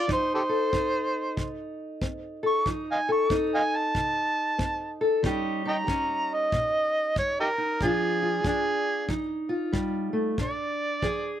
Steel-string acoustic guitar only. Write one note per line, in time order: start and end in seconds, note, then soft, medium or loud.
0.08 0.68 F3 medium
0.08 0.74 D#4 medium
0.49 2.42 A4 medium
0.73 1.33 C4 medium
0.73 2.67 D#4 medium
1.37 1.97 C3 medium
2.02 2.61 C4 medium
2.43 2.64 A4 medium
2.67 3.26 F3 medium
2.67 3.30 D#4 medium
3.09 5.00 A4 medium
3.30 3.90 C4 medium
3.30 5.21 D#4 medium
3.96 4.55 C3 medium
4.58 5.18 C4 medium
5.01 5.21 A4 medium
5.23 5.83 D#3 medium
5.23 5.86 G3 medium
5.23 5.87 C#4 medium
5.23 5.64 D#4 medium
5.23 7.82 G4 medium
5.65 7.57 D#4 medium
5.87 6.47 G3 medium
5.87 7.78 C#4 medium
6.53 7.12 A#2 medium
7.17 7.76 G3 medium
7.58 7.78 D#4 medium
7.81 8.41 A#2 medium
7.81 8.43 F3 medium
7.81 8.44 D4 medium
7.81 8.21 F4 medium
8.22 9.07 F4 medium
8.44 9.04 F3 medium
8.44 9.06 D4 medium
9.08 9.68 F3 medium
9.08 10.35 D#4 medium
9.49 10.35 F4 medium
9.72 10.13 G3 medium
10.13 10.37 A3 medium
10.38 10.98 A#2 medium
10.38 11.40 D4 medium
11.03 11.40 F3 medium
11.03 11.40 G#4 medium